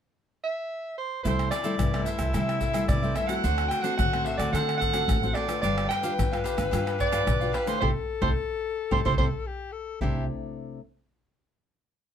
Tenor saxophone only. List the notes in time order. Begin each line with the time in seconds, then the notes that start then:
1.25 E4
3.44 F#4
4.54 A4
5.64 B4
7.82 A4
9.47 G4
9.73 A4
10.02 G4